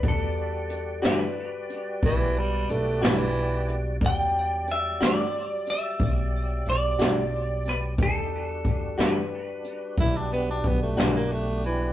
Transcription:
<<
  \new Staff \with { instrumentName = "Clean electric guitar" } { \time 12/8 \key e \minor \tempo 4. = 60 a'4. b'2. r4. | g''4 e''8 d''4 e''4. d''4. b'8 | a'4. b'2. r4. | }
  \new Staff \with { instrumentName = "Tonewheel organ" } { \time 12/8 \key e \minor <g fis' d''>1. | <fis g d''>1. | <g dis' g'>8 <g d' fis'>1~ <g d' fis'>4. | }
  \new Staff \with { instrumentName = "Clean electric guitar" } { \time 12/8 \key e \minor r4. <e g d' fis'>8 r2 r8 <e g d' fis'>8 r4 | r4. <e g d' fis'>8 r2 r8 <e g d' fis'>8 r4 | r4. <e g d' fis'>8 r2 r8 <e g d' fis'>8 r4 | }
  \new Staff \with { instrumentName = "Tenor saxophone" } { \time 12/8 \key e \minor r2. e8 g8 a8 e4~ e16 r16 | r1. | r2. e'16 d'16 b16 d'16 b16 a16 b16 ais16 a8 e8 | }
  \new Staff \with { instrumentName = "Upright bass" } { \clef bass \time 12/8 \key e \minor e,4. e8 r4 b,,4 b,,8 b,,4. | e,4. e8 r4 b,,4 b,,8 b,,4. | e,4. e8 r4 b,,4 b,,8 b,,4. | }
  \new DrumStaff \with { instrumentName = "Drums" } \drummode { \time 12/8 <hh bd>4 hh8 <hh sn>4 hh8 <hh bd>4 hh8 <hh sn>4 hh8 | <hh bd>4 hh8 <hh sn>4 hh8 <hh bd>4 hh8 <hh sn>4 <hh sn>8 | <hh bd>4 <hh bd>8 <hh sn>4 hh8 <hh bd>4 <hh bd>8 <hh sn>4 hh8 | }
>>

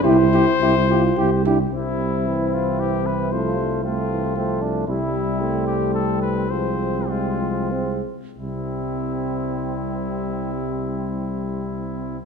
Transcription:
<<
  \new Staff \with { instrumentName = "Trumpet" } { \time 3/4 \key c \major \tempo 4 = 106 c''2~ c''8 r8 | e'4. f'8 g'8 b'8 | c''4 f'4. r8 | e'4. g'8 a'8 b'8 |
c''4 f'4. r8 | e'2.~ | e'2. | }
  \new Staff \with { instrumentName = "Trumpet" } { \time 3/4 \key c \major g'8 g'8 g'8 g'8 g'8 g'8 | e'2. | f'4 c'4 c'8 d'8 | e'4 c'2 |
c'2 c'8 r8 | c'2.~ | c'2. | }
  \new Staff \with { instrumentName = "French horn" } { \time 3/4 \key c \major e'8 e'8 e'8 e'8 e'8 e'8 | c'2. | a4 a4 a4 | g2. |
f4 aes4 c'8 r8 | g2.~ | g2. | }
  \new Staff \with { instrumentName = "Euphonium" } { \clef bass \time 3/4 \key c \major e'4 e'8 f'8 g'8 d'8 | g4 e4 e4 | f8 g8 a8 e8 f4 | g4 a2 |
aes4 g8 f8 aes8 r8 | c2.~ | c2. | }
  \new Staff \with { instrumentName = "Tuba" } { \clef bass \time 3/4 \key c \major c,4 c,4 c,4 | c,2.~ | c,2. | c,2.~ |
c,2~ c,8 r8 | c,2.~ | c,2. | }
>>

